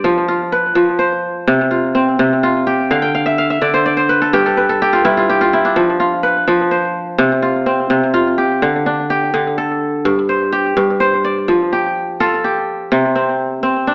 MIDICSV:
0, 0, Header, 1, 2, 480
1, 0, Start_track
1, 0, Tempo, 476948
1, 50, Time_signature, 12, 3, 24, 8
1, 14034, End_track
2, 0, Start_track
2, 0, Title_t, "Kora"
2, 0, Program_c, 0, 46
2, 0, Note_on_c, 0, 72, 67
2, 0, Note_on_c, 0, 74, 54
2, 42, Note_on_c, 0, 53, 82
2, 285, Note_on_c, 0, 65, 61
2, 526, Note_on_c, 0, 71, 64
2, 587, Note_off_c, 0, 72, 0
2, 746, Note_off_c, 0, 53, 0
2, 758, Note_on_c, 0, 53, 78
2, 921, Note_off_c, 0, 74, 0
2, 995, Note_on_c, 0, 72, 57
2, 1484, Note_on_c, 0, 48, 93
2, 1535, Note_off_c, 0, 53, 0
2, 1545, Note_off_c, 0, 71, 0
2, 1714, Note_off_c, 0, 65, 0
2, 1718, Note_on_c, 0, 65, 57
2, 1960, Note_on_c, 0, 60, 69
2, 2190, Note_off_c, 0, 72, 0
2, 2193, Note_off_c, 0, 48, 0
2, 2206, Note_on_c, 0, 48, 83
2, 2444, Note_off_c, 0, 65, 0
2, 2448, Note_on_c, 0, 65, 74
2, 2684, Note_on_c, 0, 67, 69
2, 2925, Note_on_c, 0, 50, 75
2, 2928, Note_on_c, 0, 77, 66
2, 2970, Note_off_c, 0, 48, 0
2, 3040, Note_on_c, 0, 79, 75
2, 3162, Note_off_c, 0, 77, 0
2, 3166, Note_on_c, 0, 77, 62
2, 3279, Note_on_c, 0, 76, 74
2, 3339, Note_off_c, 0, 65, 0
2, 3399, Note_off_c, 0, 77, 0
2, 3403, Note_on_c, 0, 77, 70
2, 3520, Note_off_c, 0, 76, 0
2, 3524, Note_on_c, 0, 76, 61
2, 3627, Note_off_c, 0, 50, 0
2, 3638, Note_on_c, 0, 50, 71
2, 3641, Note_on_c, 0, 74, 65
2, 3761, Note_on_c, 0, 72, 67
2, 3771, Note_off_c, 0, 60, 0
2, 3877, Note_off_c, 0, 74, 0
2, 3881, Note_on_c, 0, 74, 66
2, 3977, Note_off_c, 0, 79, 0
2, 3990, Note_off_c, 0, 72, 0
2, 3994, Note_on_c, 0, 72, 66
2, 4106, Note_off_c, 0, 67, 0
2, 4117, Note_on_c, 0, 71, 71
2, 4244, Note_on_c, 0, 69, 59
2, 4360, Note_on_c, 0, 43, 81
2, 4365, Note_on_c, 0, 67, 71
2, 4406, Note_off_c, 0, 50, 0
2, 4408, Note_off_c, 0, 77, 0
2, 4483, Note_off_c, 0, 69, 0
2, 4487, Note_on_c, 0, 69, 59
2, 4565, Note_off_c, 0, 76, 0
2, 4596, Note_off_c, 0, 71, 0
2, 4600, Note_on_c, 0, 71, 58
2, 4661, Note_off_c, 0, 72, 0
2, 4719, Note_off_c, 0, 69, 0
2, 4723, Note_on_c, 0, 69, 65
2, 4845, Note_off_c, 0, 67, 0
2, 4849, Note_on_c, 0, 67, 80
2, 4960, Note_on_c, 0, 65, 64
2, 4997, Note_off_c, 0, 74, 0
2, 5067, Note_off_c, 0, 43, 0
2, 5079, Note_on_c, 0, 43, 79
2, 5080, Note_on_c, 0, 64, 71
2, 5201, Note_off_c, 0, 65, 0
2, 5205, Note_on_c, 0, 65, 59
2, 5324, Note_off_c, 0, 67, 0
2, 5328, Note_on_c, 0, 67, 71
2, 5440, Note_off_c, 0, 65, 0
2, 5444, Note_on_c, 0, 65, 75
2, 5504, Note_off_c, 0, 64, 0
2, 5568, Note_on_c, 0, 64, 71
2, 5685, Note_on_c, 0, 62, 67
2, 5797, Note_on_c, 0, 53, 79
2, 5838, Note_off_c, 0, 71, 0
2, 5843, Note_off_c, 0, 43, 0
2, 5858, Note_off_c, 0, 64, 0
2, 6032, Note_off_c, 0, 65, 0
2, 6036, Note_on_c, 0, 65, 65
2, 6049, Note_off_c, 0, 69, 0
2, 6271, Note_on_c, 0, 71, 74
2, 6505, Note_off_c, 0, 53, 0
2, 6517, Note_on_c, 0, 53, 81
2, 6750, Note_off_c, 0, 67, 0
2, 6755, Note_on_c, 0, 72, 60
2, 7230, Note_on_c, 0, 48, 88
2, 7281, Note_off_c, 0, 53, 0
2, 7291, Note_off_c, 0, 71, 0
2, 7375, Note_off_c, 0, 62, 0
2, 7467, Note_off_c, 0, 65, 0
2, 7471, Note_on_c, 0, 65, 61
2, 7711, Note_on_c, 0, 60, 66
2, 7938, Note_off_c, 0, 48, 0
2, 7950, Note_off_c, 0, 72, 0
2, 7950, Note_on_c, 0, 48, 78
2, 8185, Note_off_c, 0, 65, 0
2, 8189, Note_on_c, 0, 65, 71
2, 8432, Note_on_c, 0, 67, 61
2, 8677, Note_on_c, 0, 50, 80
2, 8722, Note_off_c, 0, 48, 0
2, 8918, Note_on_c, 0, 62, 62
2, 9155, Note_off_c, 0, 67, 0
2, 9159, Note_on_c, 0, 67, 69
2, 9384, Note_off_c, 0, 50, 0
2, 9396, Note_on_c, 0, 50, 75
2, 9523, Note_off_c, 0, 60, 0
2, 9639, Note_on_c, 0, 69, 65
2, 9712, Note_off_c, 0, 65, 0
2, 10116, Note_on_c, 0, 43, 84
2, 10164, Note_off_c, 0, 50, 0
2, 10356, Note_on_c, 0, 72, 57
2, 10580, Note_off_c, 0, 67, 0
2, 10592, Note_on_c, 0, 67, 75
2, 10608, Note_off_c, 0, 62, 0
2, 10823, Note_off_c, 0, 43, 0
2, 10835, Note_on_c, 0, 43, 78
2, 10965, Note_off_c, 0, 69, 0
2, 11068, Note_off_c, 0, 72, 0
2, 11072, Note_on_c, 0, 72, 71
2, 11317, Note_on_c, 0, 74, 63
2, 11555, Note_on_c, 0, 53, 76
2, 11608, Note_off_c, 0, 43, 0
2, 11797, Note_off_c, 0, 67, 0
2, 11801, Note_on_c, 0, 67, 56
2, 12267, Note_off_c, 0, 72, 0
2, 12281, Note_on_c, 0, 69, 74
2, 12282, Note_on_c, 0, 65, 67
2, 12432, Note_off_c, 0, 74, 0
2, 12518, Note_off_c, 0, 67, 0
2, 12523, Note_on_c, 0, 67, 57
2, 12999, Note_on_c, 0, 48, 81
2, 13055, Note_off_c, 0, 53, 0
2, 13239, Note_on_c, 0, 60, 55
2, 13607, Note_off_c, 0, 69, 0
2, 13712, Note_off_c, 0, 60, 0
2, 13716, Note_on_c, 0, 60, 74
2, 13805, Note_off_c, 0, 65, 0
2, 13944, Note_off_c, 0, 67, 0
2, 13962, Note_on_c, 0, 62, 64
2, 14034, Note_off_c, 0, 48, 0
2, 14034, Note_off_c, 0, 60, 0
2, 14034, Note_off_c, 0, 62, 0
2, 14034, End_track
0, 0, End_of_file